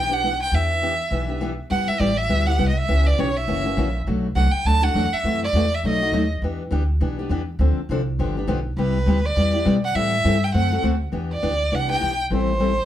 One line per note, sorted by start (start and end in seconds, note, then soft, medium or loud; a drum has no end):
0.00 0.41 B1 medium
0.00 0.10 E3 medium
0.00 0.10 B3 medium
0.00 0.15 G5 loud
0.10 0.23 B3 soft
0.10 0.22 D4 medium
0.10 0.22 G4 medium
0.10 0.42 F#5 loud
0.24 0.34 E3 medium
0.24 0.34 B3 medium
0.24 0.34 D4 medium
0.24 0.34 G4 medium
0.43 0.57 G5 medium
0.52 0.99 E2 medium
0.52 0.72 E3 medium
0.52 0.72 B3 medium
0.52 0.72 D4 medium
0.52 0.72 G4 medium
0.52 1.42 E5 medium
0.82 0.93 E3 medium
0.82 0.93 B3 medium
0.82 0.93 D4 medium
0.82 0.93 G4 medium
1.11 1.58 B1 medium
1.11 1.28 E3 medium
1.11 1.29 B3 medium
1.11 1.28 D4 medium
1.11 1.28 G4 medium
1.29 1.40 B3 soft
1.29 1.41 D4 soft
1.29 1.40 G4 medium
1.41 1.52 E3 medium
1.41 1.52 B3 medium
1.41 1.52 D4 medium
1.41 1.52 G4 medium
1.70 1.87 G1 medium
1.70 1.90 G3 medium
1.70 1.90 B3 medium
1.70 1.90 E4 medium
1.70 1.90 G4 medium
1.70 1.90 F#5 loud
1.88 2.01 E5 medium
1.88 muted upright bass stroke soft
2.00 2.29 A1 medium
2.00 2.10 G3 medium
2.00 2.11 B3 medium
2.00 2.11 E4 medium
2.00 2.11 G4 medium
2.00 2.19 D5 medium
2.17 2.48 E5 medium
2.29 2.58 D2 medium
2.29 2.46 G3 medium
2.29 2.46 B3 medium
2.29 2.47 E4 medium
2.29 2.45 G4 medium
2.46 2.58 B3 soft
2.46 2.58 E4 medium
2.46 2.58 G4 medium
2.46 2.68 F#5 loud
2.58 2.88 C2 medium
2.58 2.69 G3 medium
2.58 2.70 B3 loud
2.58 2.70 E4 loud
2.58 2.70 G4 medium
2.69 2.79 D#5 medium
2.77 3.08 E5 medium
2.88 3.17 C#2 medium
2.88 3.08 C#3 medium
2.88 3.08 E3 medium
2.88 3.08 B3 medium
2.88 3.08 C#4 medium
2.88 3.08 G4 medium
3.07 3.21 D5 medium
3.18 3.47 B1 medium
3.18 3.29 C#3 medium
3.18 3.29 E3 medium
3.18 3.29 B3 medium
3.18 3.29 C#4 medium
3.18 3.29 G4 medium
3.18 3.38 C#5 medium
3.37 3.95 E5 medium
3.48 3.76 F#1 medium
3.48 3.65 C#3 medium
3.48 3.64 E3 medium
3.48 3.65 A#3 medium
3.48 3.64 C#4 medium
3.48 3.64 F#4 medium
3.65 3.77 A#3 medium
3.65 3.77 C#4 medium
3.65 3.77 F#4 medium
3.77 4.06 A#1 medium
3.77 3.88 C#3 medium
3.77 3.88 E3 medium
3.77 3.88 A#3 medium
3.77 3.88 C#4 loud
3.77 3.88 F#4 medium
4.07 4.35 B1 medium
4.07 4.26 B2 medium
4.07 4.26 F#3 medium
4.07 4.26 A3 medium
4.07 4.26 D4 medium
4.07 4.26 F#4 medium
4.35 4.52 C2 medium
4.35 4.46 B2 medium
4.35 4.47 F#3 medium
4.35 4.47 A3 medium
4.35 4.47 D4 medium
4.35 4.47 F#4 loud
4.35 4.53 F#5 loud
4.52 4.68 G5 medium
4.52 muted upright bass stroke soft
4.65 4.94 D2 medium
4.65 4.83 B2 medium
4.65 4.83 F#3 medium
4.65 4.83 A3 medium
4.65 4.82 D4 medium
4.65 4.81 F#4 medium
4.65 4.85 A5 loud
4.82 4.94 A3 soft
4.82 4.94 D4 medium
4.82 4.94 F#4 medium
4.82 5.15 F#5 loud
4.94 5.11 E2 medium
4.94 5.05 B2 medium
4.94 5.06 F#3 medium
4.94 5.06 A3 medium
4.94 5.06 D4 medium
4.94 5.06 F#4 loud
5.13 5.42 E5 medium
5.13 muted upright bass stroke soft
5.24 5.53 F#2 medium
5.24 5.43 C3 medium
5.24 5.43 E3 medium
5.24 5.44 A3 medium
5.24 5.44 E4 medium
5.24 5.44 F#4 medium
5.44 5.76 D5 medium
5.53 5.82 E2 medium
5.53 5.65 C3 medium
5.53 5.65 E3 medium
5.53 5.65 A3 medium
5.53 5.65 E4 medium
5.53 5.65 F#4 loud
5.74 5.85 E5 medium
5.84 6.11 B1 medium
5.84 6.00 B2 medium
5.84 6.01 F#3 medium
5.84 6.01 A3 medium
5.84 6.01 D#4 medium
5.84 6.01 F#4 medium
5.88 6.29 D#5 medium
6.02 6.12 A3 medium
6.02 6.13 D#4 medium
6.02 6.13 F#4 medium
6.12 6.41 D#2 medium
6.12 6.23 B2 medium
6.12 6.24 F#3 medium
6.12 6.24 A3 medium
6.12 6.24 D#4 medium
6.12 6.24 F#4 loud
6.42 6.70 E2 medium
6.42 6.62 E3 medium
6.42 6.62 B3 medium
6.42 6.62 D4 medium
6.42 6.62 G4 medium
6.71 7.00 D2 medium
6.71 6.82 E3 medium
6.71 6.82 B3 medium
6.71 6.82 D4 medium
6.71 6.82 G4 medium
7.01 7.29 B1 medium
7.01 7.18 E3 medium
7.01 7.18 B3 medium
7.01 7.18 D4 medium
7.01 7.17 G4 medium
7.19 7.29 B3 medium
7.19 7.30 D4 medium
7.19 7.30 G4 medium
7.29 7.58 E2 medium
7.29 7.41 E3 medium
7.29 7.41 B3 medium
7.29 7.41 D4 medium
7.29 7.41 G4 medium
7.59 7.75 D2 medium
7.59 7.79 D3 medium
7.59 7.79 F3 medium
7.59 7.79 C4 medium
7.59 7.79 D4 medium
7.59 7.79 A4 medium
7.77 muted upright bass stroke soft
7.89 8.18 C2 medium
7.89 8.00 D3 medium
7.89 8.01 F3 medium
7.89 8.01 C4 medium
7.89 8.01 D4 loud
7.89 8.01 A4 loud
8.19 8.47 G1 medium
8.19 8.36 D3 medium
8.19 8.36 F3 medium
8.19 8.36 B3 medium
8.19 8.36 D4 medium
8.19 8.36 G4 medium
8.37 8.47 B3 soft
8.37 8.47 D4 medium
8.37 8.47 G4 medium
8.47 8.76 B1 medium
8.47 8.58 D3 medium
8.47 8.59 F3 medium
8.47 8.59 B3 medium
8.47 8.59 D4 loud
8.47 8.59 G4 medium
8.77 9.06 C2 medium
8.77 8.97 C3 medium
8.77 8.97 G3 medium
8.77 8.97 B3 medium
8.77 8.97 E4 medium
8.77 8.97 G4 medium
8.77 9.27 B4 medium
9.06 9.35 D2 medium
9.06 9.18 C3 medium
9.06 9.18 G3 medium
9.06 9.18 B3 medium
9.06 9.18 E4 loud
9.06 9.18 G4 medium
9.25 9.66 D5 medium
9.36 9.65 E2 medium
9.36 9.53 C3 medium
9.36 9.53 G3 medium
9.36 9.53 B3 medium
9.36 9.53 E4 medium
9.36 9.52 G4 medium
9.53 9.65 B3 medium
9.53 9.65 E4 medium
9.53 9.65 G4 medium
9.65 9.94 B2 medium
9.65 9.76 C3 medium
9.65 9.76 G3 loud
9.65 9.77 B3 medium
9.65 9.77 E4 medium
9.65 9.77 G4 medium
9.85 9.97 F#5 loud
9.95 10.24 A2 medium
9.95 10.14 E3 medium
9.95 10.14 G3 medium
9.95 10.15 C4 medium
9.95 10.15 E4 medium
9.95 10.15 A4 medium
9.95 10.46 E5 loud
10.24 10.53 G2 medium
10.24 10.35 E3 medium
10.24 10.35 G3 medium
10.24 10.35 C4 medium
10.24 10.36 E4 medium
10.24 10.36 A4 loud
10.44 10.54 G5 medium
10.54 10.83 F#2 medium
10.54 10.71 D3 medium
10.54 10.71 A3 medium
10.54 10.71 C4 medium
10.54 10.71 F#4 medium
10.54 10.70 A4 medium
10.54 10.82 F#5 medium
10.71 10.82 C4 soft
10.71 10.83 F#4 medium
10.71 10.83 A4 medium
10.82 11.12 D2 medium
10.82 10.94 D3 medium
10.82 10.94 A3 medium
10.82 10.94 C4 loud
10.82 10.94 F#4 loud
10.82 10.95 A4 loud
11.12 11.36 E2 medium
11.12 11.32 E3 medium
11.12 11.32 B3 medium
11.12 11.33 D4 medium
11.12 11.32 G4 medium
11.33 11.76 D5 medium
11.42 11.68 D2 medium
11.42 11.53 E3 medium
11.42 11.53 B3 medium
11.42 11.54 D4 medium
11.42 11.54 G4 medium
11.72 11.97 C2 medium
11.72 11.89 E3 medium
11.72 11.89 B3 medium
11.72 11.88 D4 medium
11.72 11.87 G4 medium
11.72 11.91 F#5 loud
11.88 11.99 B3 soft
11.88 12.00 D4 medium
11.88 12.00 G4 medium
11.88 12.18 G5 loud
12.01 12.27 B1 medium
12.01 12.12 E3 medium
12.01 12.12 B3 medium
12.01 12.12 D4 medium
12.01 12.12 G4 loud
12.30 12.78 A1 medium
12.30 12.50 E3 medium
12.30 12.50 G3 medium
12.30 12.51 C4 medium
12.30 12.51 E4 medium
12.30 12.51 A4 medium
12.30 12.85 C5 loud
12.60 12.71 E3 medium
12.60 12.71 G3 medium
12.60 12.71 C4 medium
12.60 12.71 E4 medium
12.60 12.71 A4 medium